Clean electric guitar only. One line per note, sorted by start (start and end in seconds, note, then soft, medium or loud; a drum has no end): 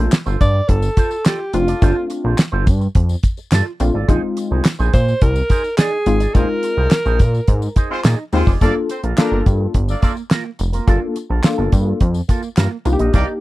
0.00 0.11 F4 medium
0.00 0.11 A4 medium
0.00 0.12 C5 medium
0.12 muted clean electric guitar stroke soft
0.26 0.39 F4 medium
0.26 0.40 A4 medium
0.26 0.41 C5 medium
0.54 muted clean electric guitar stroke soft
0.69 muted clean electric guitar stroke soft
0.83 muted clean electric guitar stroke soft
0.97 1.15 F4 medium
0.97 1.11 A4 medium
0.97 1.10 C5 medium
1.11 muted clean electric guitar stroke medium
1.25 1.44 F4 medium
1.25 1.39 A4 medium
1.25 1.39 D5 loud
1.40 muted clean electric guitar stroke soft
1.54 muted clean electric guitar stroke soft
1.68 1.81 F4 medium
1.68 1.82 A4 medium
1.68 1.82 D5 medium
1.82 2.00 F4 medium
1.82 1.96 A4 medium
1.82 1.95 C5 medium
1.96 muted clean electric guitar stroke medium
2.10 muted clean electric guitar stroke soft
2.24 2.37 F4 medium
2.24 2.38 A4 medium
2.24 2.38 C5 medium
2.52 2.65 F4 medium
2.52 2.66 A4 medium
2.52 2.66 C5 medium
2.66 muted clean electric guitar stroke soft
2.81 muted clean electric guitar stroke soft
2.95 muted clean electric guitar stroke soft
3.09 muted clean electric guitar stroke soft
3.38 muted clean electric guitar stroke soft
3.52 3.70 F4 medium
3.52 3.66 A4 medium
3.52 3.65 D5 loud
3.66 muted clean electric guitar stroke soft
3.80 muted clean electric guitar stroke soft
3.94 4.08 F4 medium
3.94 4.09 A4 medium
3.94 4.09 D5 medium
4.08 4.27 D#4 medium
4.08 4.23 G#4 medium
4.08 4.21 C5 medium
4.23 muted clean electric guitar stroke soft
4.36 muted clean electric guitar stroke soft
4.51 4.64 D#4 medium
4.51 4.65 G#4 medium
4.51 4.65 C5 medium
4.79 4.92 D#4 medium
4.79 4.93 G#4 medium
4.79 4.93 C5 medium
4.93 muted clean electric guitar stroke soft
5.07 muted clean electric guitar stroke soft
5.21 muted clean electric guitar stroke soft
5.35 muted clean electric guitar stroke medium
5.49 5.68 D#4 medium
5.49 5.63 G#4 medium
5.49 5.62 C5 loud
5.63 muted clean electric guitar stroke medium
5.78 5.96 D#4 medium
5.78 5.92 G#4 medium
5.78 5.92 D5 medium
5.92 muted clean electric guitar stroke soft
6.06 muted clean electric guitar stroke soft
6.20 6.33 D#4 soft
6.20 6.34 G#4 soft
6.20 6.35 D5 medium
6.34 6.53 D#4 medium
6.34 6.49 G#4 loud
6.34 6.48 C5 loud
6.49 muted clean electric guitar stroke medium
6.63 muted clean electric guitar stroke soft
6.77 6.90 D#4 medium
6.77 6.91 G#4 medium
6.77 6.91 C5 medium
6.91 muted clean electric guitar stroke soft
7.05 7.18 D#4 medium
7.05 7.19 G#4 medium
7.05 7.20 C5 medium
7.20 muted clean electric guitar stroke soft
7.34 muted clean electric guitar stroke soft
7.48 muted clean electric guitar stroke soft
7.62 muted clean electric guitar stroke soft
7.76 7.95 D#4 medium
7.76 7.90 G#4 medium
7.76 7.89 C5 medium
7.90 muted clean electric guitar stroke soft
8.04 8.23 D#4 medium
8.04 8.18 G#4 loud
8.04 8.18 D5 medium
8.19 muted clean electric guitar stroke soft
8.32 muted clean electric guitar stroke soft
8.47 8.60 D#4 soft
8.47 8.61 G#4 medium
8.47 8.61 D5 medium
8.61 8.80 A#3 medium
8.61 8.75 F4 medium
8.61 8.74 A4 medium
8.75 muted clean electric guitar stroke soft
8.89 muted clean electric guitar stroke soft
9.03 9.16 A#3 medium
9.03 9.17 F4 medium
9.03 9.18 A4 medium
9.17 muted clean electric guitar stroke soft
9.31 9.44 A#3 medium
9.31 9.45 F4 medium
9.31 9.46 A4 medium
9.46 muted clean electric guitar stroke soft
9.60 muted clean electric guitar stroke soft
9.74 muted clean electric guitar stroke soft
9.88 muted clean electric guitar stroke soft
10.02 10.21 A#3 medium
10.02 10.16 F4 medium
10.02 10.15 A4 medium
10.16 muted clean electric guitar stroke soft
10.30 10.49 A#3 medium
10.30 10.45 F4 medium
10.30 10.44 A#4 medium
10.45 muted clean electric guitar stroke soft
10.59 muted clean electric guitar stroke soft
10.73 10.86 A#3 soft
10.73 10.87 F4 soft
10.73 10.88 A#4 medium
10.87 11.06 A#3 medium
10.87 11.01 F4 medium
10.87 11.00 A4 loud
11.01 muted clean electric guitar stroke soft
11.16 muted clean electric guitar stroke soft
11.30 11.43 A#3 soft
11.30 11.43 F4 medium
11.30 11.44 A4 medium
11.58 11.71 A#3 medium
11.58 11.71 F4 medium
11.58 11.72 A4 medium
11.72 muted clean electric guitar stroke soft
11.86 muted clean electric guitar stroke soft
12.00 muted clean electric guitar stroke soft
12.15 muted clean electric guitar stroke soft
12.28 12.47 A#3 medium
12.28 12.43 F4 medium
12.28 12.41 A4 medium
12.43 muted clean electric guitar stroke soft
12.57 12.76 A#3 medium
12.57 12.71 F4 medium
12.57 12.71 A#4 medium
12.71 muted clean electric guitar stroke soft
12.85 muted clean electric guitar stroke soft
12.99 13.12 D#4 medium
12.99 13.13 A#4 medium
12.99 13.14 D#5 medium
13.13 13.32 D#4 medium
13.13 13.28 A#4 medium
13.13 13.26 D5 medium
13.28 muted clean electric guitar stroke medium